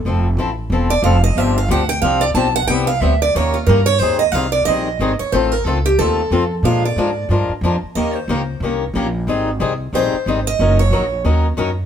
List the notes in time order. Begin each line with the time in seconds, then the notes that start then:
0.05 F1 F3 C4 E4 A4
0.37 A1 F3 C4 E4 A4
0.70 E1 F3 C4 E4 A4
0.90 D5
1.02 F1 F3 C4 E4 A4 F5
1.24 D#5
1.35 G1 C3 F3 C4 D4 G4 E5
1.58 F5
1.68 D2 C3 F3 C4 D4 G4 F#5
1.89 G5
2.02 C2 C3 F3 C4 D4 G4 F5
2.21 D5
2.34 B1 C3 F3 C4 D4 G4 A5
2.56 F#5
2.67 C2 C3 G3 B3 E4 G4 G5
2.87 F5
3.01 D2 C3 G3 B3 E4 G4 E5
3.22 D5
3.35 D#2 D#3 A#3 C#4 G4 A#4 C#5
3.54 F4
3.67 G2 D#3 A#3 C#4 G4 A#4
3.86 C#5
3.99 D#2 D#3 G3 C4 D#4 G#4 C5
4.19 D#5
4.32 C2 D#3 G3 C4 D#4 G#4 F5
4.52 D5
4.65 A#1 D#3 G3 C4 D#4 G#4 D#5
4.99 G#1 D#3 G3 C4 D#4 G#4
5.19 C#5, muted upright bass stroke
5.32 A1 D#3 A3 C4 F4 A4 C5
5.52 A#4
5.65 C#2 D#3 A3 C4 F4 A4
5.86 G4
5.98 D#2 D#3 A3 C4 F4 A4
6.30 F2 D#3 A3 C4 F4 A4
6.63 A#2 F3 G#3 D4 F4 A#4 F5
6.85 D5
6.96 G#2 F3 G#3 D4 F4 A#4
7.29 G2 F3 G#3 D4 F4 A#4
7.49 muted upright bass stroke
7.61 F2 F3 G#3 D4 F4 A#4
7.83 muted upright bass stroke
7.95 D#2 D#3 A#3 C#4 G4 A#4 D#5
8.15 C5
8.28 C#2 D#3 A#3 C#4 G4 A#4
8.60 C2 D#3 A#3 C#4 G4
8.65 A#4
8.94 A#1 D#3 A#3 C#4 G4 A#4
9.27 G#1 D#3 G3 C4 D#4 G#4
9.60 C2 D#3 G3 C4 D#4 G#4
9.93 A#1 D#3 G3 C4 D#4 G#4 C5
10.13 muted upright bass stroke
10.26 G#1 D#3 G3 C4 D#4 G#4
10.47 D#5
10.59 F#1 D#3 F#3 C#4 D#4 A#4
10.79 C#5
10.91 A#1 D#3 F#3 C#4 D#4 A#4
11.24 D#2 D#3 F#3 C#4 D#4 A#4
11.57 F#2 D#3 F#3 C#4 D#4 A#4